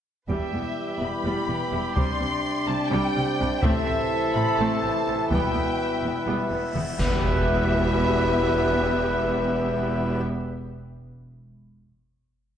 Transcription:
0.29 double bass section E1, cello section E2, trombone section E3 G3, viola section G3, pipe organ G3 E4 G4 G5, french horn section B3 E4, trumpet section G4, violin section B4 E5, taiko
0.52 double bass section E1, cello section E2, viola section G3 B3
1.00 double bass section E1, cello section E2, viola section G3 B3, violin section B5
1.24 double bass section E1, cello section E2, viola section G3
1.48 double bass section E1, cello section E2, viola section G3 B3
1.71 double bass section E1, cello section E2, viola section G3 E4
1.95 double bass section C2, trombone section C3, cello section C3, viola section G3, pipe organ C4 D4, french horn section C4 D4, violin section D5 C6, taiko
2.19 double bass section C2, cello section C3, viola section G3 C4
2.66 double bass section C2, cello section C3, viola section G3 C4, violin section A5
2.90 double bass section C2, cello section C3, viola section G3, violin section G5
3.15 double bass section C2, cello section C3, viola section G3 C4
3.39 double bass section C2, cello section C3, viola section G3 D4
3.62 double bass section A1, cello section A2, trombone section E3, viola section A3 C4, french horn section A3 E4, pipe organ E4 A4 E5, violin section A4 C5 E5, trumpet section A4, taiko
3.86 double bass section A1, cello section A2, viola section C4
4.34 double bass section A1, cello section A2, viola section C4, violin section B5
4.58 double bass section A1, cello section A2, viola section A3 C4, violin section A5
4.83 double bass section A1, cello section A2, viola section C4
5.06 double bass section A1, cello section A2, viola section C4 E4
5.29 double bass section E1, cello section E2, trombone section B2, viola section G3 B3, french horn section G3, pipe organ B3 B4, trumpet section B4, violin section B4 E5 G5, taiko, cymbal swell
5.53 double bass section E1, cello section E2, viola section B3
6.03 double bass section E1, cello section E2, viola section B3
6.26 double bass section E1, cello section E2, viola section G3 B3
6.51 double bass section E1, cello section E2, viola section B3
6.74 double bass section E1, cello section E2, viola section B3 E4, taiko mid
6.98 double bass section E1, cello section E2, trombone section B2 E3, french horn section G3 E4, viola section B3 G4, pipe organ B3 G4 B4 E5, violin section B4 E5, trumpet section B4, concert bass drum, crash, impact

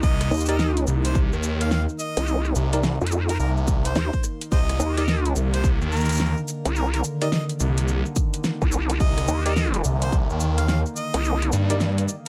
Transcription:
Already playing: ambient pad D#3 A#3 D#4
0.03 detuned saw bass C2, harmonica D#5, kick, shaker
0.21 cross-stick, closed hi-hat, shaker
0.31 wobble bass D#2, shaker
0.34 shaker
0.37 shaker
0.40 shaker
0.46 tine electric piano D#4 A#4, closed hi-hat, shaker
0.49 tine electric piano G4 D5, harmonica D#5, shaker
0.59 harmonica D#5, snare, shaker
0.77 closed hi-hat, shaker
0.87 detuned saw bass C2, shaker
1.05 harmonica C5, closed hi-hat, shaker
1.15 kick, shaker
1.33 detuned saw bass D#2, shaker
1.43 shaker
1.61 harmonica F5, cross-stick, closed hi-hat, shaker
1.71 harmonica F5, snare, shaker
1.89 shaker
1.99 harmonica D#5, shaker
2.17 wobble bass C2, closed hi-hat, shaker
2.27 shaker
2.45 cross-stick, shaker
2.55 detuned saw bass C2, shaker
2.73 tine electric piano D#4 G4 A#4 D5, closed hi-hat, shaker
2.83 snare, shaker
3.01 wobble bass F2, shaker
3.07 closed hi-hat
3.12 shaker
3.29 harmonica A#4, closed hi-hat, shaker
3.40 detuned saw bass C2, harmonica A#4, shaker
3.57 shaker
3.68 kick, shaker
3.85 harmonica C5, closed hi-hat, shaker
3.96 wobble bass D#2, snare, shaker
4.13 kick, shaker
4.24 cross-stick, shaker
4.41 closed hi-hat, shaker
4.52 detuned saw bass C2, ambient pad D3, harmonica C5 D#5, kick, shaker
4.69 cross-stick, closed hi-hat, shaker
4.80 wobble bass D#2, shaker
4.97 tine electric piano D#4 G4 A#4 D5, harmonica D#5, closed hi-hat, shaker
5.08 harmonica D#5, snare, shaker
5.25 closed hi-hat, shaker
5.36 detuned saw bass C2, shaker
5.54 harmonica C5, closed hi-hat, shaker
5.64 kick, shaker
5.82 detuned saw bass D#2, shaker
5.92 harmonica A#4, shaker
5.96 shaker
6.01 shaker
6.05 shaker
6.09 cross-stick, closed hi-hat, shaker
6.12 shaker
6.15 shaker
6.16 snare, shaker
6.26 shaker
6.37 shaker
6.48 shaker
6.65 wobble bass C2, closed hi-hat, shaker
6.76 harmonica A#4, shaker
6.94 harmonica A#4, cross-stick, closed hi-hat, shaker
7.04 shaker
7.21 tine electric piano D#4 G4 A#4 D5, harmonica D#5, closed hi-hat, shaker
7.32 harmonica D#5, snare, shaker
7.49 closed hi-hat, shaker
7.60 detuned saw bass C2, shaker
7.78 closed hi-hat, shaker
7.88 shaker
8.06 shaker
8.16 kick, shaker
8.34 closed hi-hat, shaker
8.44 snare, shaker
8.62 wobble bass C2, kick, shaker
8.72 cross-stick, shaker
8.90 closed hi-hat, shaker
9.00 detuned saw bass C2, harmonica D#5, kick, shaker
9.18 cross-stick, closed hi-hat, shaker
9.28 wobble bass D#2, shaker
9.46 tine electric piano D#4 G4 A#4 D5, harmonica D#5, closed hi-hat, shaker
9.56 harmonica D#5, snare, shaker
9.74 closed hi-hat, shaker
9.84 detuned saw bass C2, shaker
10.02 harmonica C5, closed hi-hat, shaker
10.12 kick, shaker
10.30 detuned saw bass D#2, shaker
10.40 shaker
10.58 harmonica F5, cross-stick, closed hi-hat, shaker
10.68 harmonica F5, snare, shaker
10.86 shaker
10.96 harmonica D#5, shaker
11.14 wobble bass C2, closed hi-hat, shaker
11.25 shaker
11.42 cross-stick, closed hi-hat, shaker
11.52 detuned saw bass G2, shaker
11.70 tine electric piano D#4 G4 A#4 D5, closed hi-hat, shaker
11.80 snare, shaker
11.98 closed hi-hat, shaker
12.08 shaker

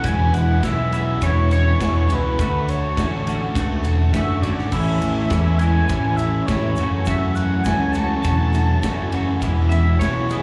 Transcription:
0.03 picked electric bass E1, clean electric guitar E2 B2 E3 G#3 C#4 E4, distorted electric guitar B3, analog synth lead G#5, kick, ride, shaker
0.33 picked electric bass E1, analog synth lead F#5, ride, shaker
0.63 picked electric bass B1, clean electric guitar E2 B2 E3 G#3 C#4 E4, distorted electric guitar B3, analog synth lead E5, kick, snare, ride, shaker
0.91 clean electric guitar E2 B2 E3 G#3 C#4 E4, distorted electric guitar B3, analog synth lead E5, ride, shaker
1.22 picked electric bass E1, clean electric guitar E2 B2 E3 G#3 C#4 E4, distorted electric guitar B3, analog synth lead C#5, kick, ride, shaker
1.51 analog synth lead C#5, ride, shaker
1.80 picked electric bass E1, clean electric guitar E2 B2 E3 G#3 C#4 E4, distorted electric guitar B3, kick, snare, ride, shaker
2.08 picked electric bass C#2, clean electric guitar E2 B2 E3 G#3 C#4 E4, distorted electric guitar B3, ride, shaker
2.13 analog synth lead B4
2.38 picked electric bass D2, clean electric guitar D3 A3 F#4, distorted electric guitar D4, analog synth lead B4, kick, ride, shaker
2.69 analog synth lead C#5, ride, shaker
2.97 picked electric bass A1, clean electric guitar D3 A3 C#4 F#4, distorted electric guitar D4, kick, snare, ride, shaker
3.27 clean electric guitar D3 A3 C#4 F#4, distorted electric guitar D4, ride, shaker
3.55 picked electric bass C#2, clean electric guitar D3 A3 F#4, distorted electric guitar D4, kick, ride, shaker
3.84 picked electric bass E1, ride, shaker
4.13 picked electric bass F#1, clean electric guitar D3 A3 C#4 F#4, distorted electric guitar D4, analog synth lead E5, kick, snare, ride, shaker
4.42 picked electric bass G#1, clean electric guitar D3 A3 C#4 F#4, distorted electric guitar D4, analog synth lead D5, ride, shaker
4.58 snare
4.72 picked electric bass A1, clean electric guitar A2 E3 C#4 E4, distorted electric guitar A3, analog synth lead E5, kick, crash, shaker
5.01 picked electric bass A1, ride, shaker
5.30 picked electric bass E2, clean electric guitar A2 E3 G#3 C#4 E4, distorted electric guitar A3, kick, snare, ride, shaker
5.58 clean electric guitar A2 E3 G#3 C#4 E4, distorted electric guitar A3, analog synth lead G#5, ride, shaker
5.89 picked electric bass A1, clean electric guitar A2 E3 C#4 E4, distorted electric guitar A3, kick, ride, shaker
6.16 analog synth lead E5, ride, shaker
6.46 picked electric bass A1, clean electric guitar A2 E3 G#3 C#4 E4, distorted electric guitar A3, analog synth lead C#5, kick, snare, ride, shaker
6.76 picked electric bass F#1, clean electric guitar F#2 C#3 E3 A3 C#4 F#4, distorted electric guitar F#3, ride, shaker
7.06 picked electric bass F#2, clean electric guitar F#2 C#3 E3 A3 C#4 F#4, distorted electric guitar F#3, analog synth lead E5, kick, ride, shaker
7.35 analog synth lead F#5, ride, shaker
7.64 picked electric bass C#2, clean electric guitar F#2 C#3 E3 A3 C#4 F#4, distorted electric guitar F#3, analog synth lead G#5, kick, snare, ride, shaker
7.92 clean electric guitar F#2 C#3 E3 A3 C#4 F#4, analog synth lead A5, ride, shaker
7.97 distorted electric guitar F#3
8.22 picked electric bass E1, clean electric guitar F#2 C#3 E3 A3 C#4, distorted electric guitar F#3, analog synth lead A5, kick, ride, shaker
8.26 clean electric guitar F#4
8.54 ride, shaker
8.83 picked electric bass F#1, clean electric guitar F#2 C#3 E3 A3 C#4 F#4, distorted electric guitar F#3, kick, snare, ride, shaker
9.11 clean electric guitar F#2 C#3 E3 A3 C#4 F#4, distorted electric guitar F#3, ride
9.41 picked electric bass E1, clean electric guitar E2 B2 E3 G#3 C#4 E4, distorted electric guitar B3, kick, ride, shaker
9.69 picked electric bass E1, analog synth lead E5, ride, shaker
9.99 picked electric bass B1, clean electric guitar E2 B2 E3 G#3 C#4 E4, distorted electric guitar B3, analog synth lead C#5, kick, snare, ride, shaker
10.30 clean electric guitar E2 B2 E3 G#3 C#4 E4, distorted electric guitar B3, analog synth lead G#4, ride, shaker

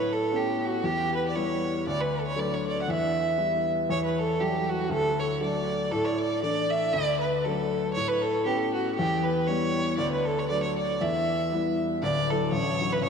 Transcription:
Already playing: upright piano A2, fiddle B4
0.13 fiddle A4
0.32 upright piano A3 B3 C#4
0.36 fiddle G4
0.65 fiddle F#4
0.83 upright piano E2, fiddle G4
1.15 fiddle B4
1.28 fiddle D5
1.35 upright piano G3 B3 E4, fiddle C#5
1.86 upright piano D2, fiddle D5
2.01 fiddle B4
2.15 fiddle A4
2.26 fiddle C#5
2.36 upright piano F#3 A3 D4, fiddle D5
2.54 fiddle C#5
2.67 fiddle D5
2.82 fiddle F#5
2.88 upright piano E2, fiddle E5
3.37 upright piano G3 B3 E4
3.89 upright piano E2, fiddle C#5
4.04 fiddle B4
4.19 fiddle A4
4.39 upright piano F#3 G3 E4, fiddle G4
4.69 fiddle F#4
4.89 upright piano D2, fiddle A4
5.19 fiddle C#5
5.40 upright piano F#3 A3 D4, fiddle D5
5.91 upright piano A2, fiddle A4
6.04 fiddle C#5 D5
6.19 fiddle D5
6.42 upright piano E3 A3 D4, fiddle D5
6.70 fiddle E5
6.93 upright piano D2, fiddle D5
7.20 fiddle B4
7.44 upright piano F#3 A3 D4, fiddle A4
7.93 upright piano A2, fiddle C#5
8.08 fiddle B4
8.22 fiddle A4
8.45 upright piano A3 B3 C#4, fiddle G4
8.55 fiddle G4 A4
8.73 fiddle F#4
8.95 upright piano E2, fiddle G4
9.24 fiddle B4
9.47 upright piano G3 B3 E4, fiddle C#5
9.97 upright piano D2, fiddle D5
10.12 fiddle B4
10.25 fiddle A4
10.39 fiddle C#5
10.48 upright piano F#3 A3 D4, fiddle D5
10.63 fiddle C#5
10.78 fiddle D5
11.01 upright piano E2, fiddle E5
11.52 upright piano G3 B3 E4
12.03 upright piano D1 D2, fiddle D5
12.30 upright piano F#3 D4 E4, fiddle A4
12.52 upright piano A1, fiddle C#5
12.80 upright piano F#3 D4 E4
12.93 fiddle B4
13.02 upright piano C#2, fiddle C#5

